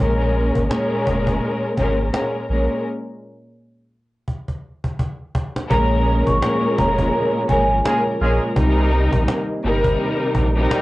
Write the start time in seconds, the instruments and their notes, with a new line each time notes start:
0.00 sub bass A#1, string section A#2 G#3 C#4 A#4
0.34 cajon slap
0.55 sub bass G#1, cajon bass
0.69 string section A#2 G#3 C#4 A#4, cajon slap
0.93 cajon slap
1.07 sub bass F1, cajon bass
1.27 cajon bass
1.41 cajon slap
1.77 sub bass G#1, string section A#2 G#3 C#4 A#4, cajon bass
1.98 cajon slap
2.12 string section A#2 G#3 C#4 A#4, cajon slap
2.49 sub bass A#1, string section A#2 G#3 C#4 A#4, cajon slap
2.71 cajon slap
4.28 cajon bass
4.48 cajon bass
4.84 cajon bass
4.99 cajon bass
5.35 cajon bass
5.56 cajon slap
5.70 sub bass A#1, string section A#2 G#3 C#4 A#4, analog synth pad C#3 F3 G#3 A#3 F4, vibraphone A#5, cajon bass
6.06 cajon slap
6.26 sub bass G#1, vibraphone C#6, cajon bass
6.41 string section A#2 G#3 C#4 A#4, cajon slap
6.64 cajon slap
6.78 sub bass F1, vibraphone A#5, cajon bass
6.98 cajon bass
7.13 cajon slap
7.48 sub bass G#1, string section A#2 G#3 C#4 A#4, vibraphone G#5, cajon bass
7.69 cajon slap
7.84 string section A#2 G#3 C#4 A#4, horn section G#3 C#4 F4 G#4, cajon slap
8.20 sub bass A#1, string section A#2 G#3 C#4 A#4, horn section G#3 C#4 F4 G#4, cajon slap
8.42 cajon slap
8.54 sub bass C2, analog synth pad C3 D#3 G3 D#4, string section C3 G3 D#4 A#4, cajon bass
8.92 cajon slap
9.12 sub bass A#1, cajon bass
9.28 cajon slap
9.50 cajon slap
9.63 sub bass G1, string section C3 G3 D#4 A#4, cajon slap
9.84 cajon bass
9.98 cajon slap
10.35 sub bass A#1, cajon bass
10.55 string section C3 G3 D#4 A#4, cajon slap
10.70 horn section G3 C4 D#4 G4, cajon slap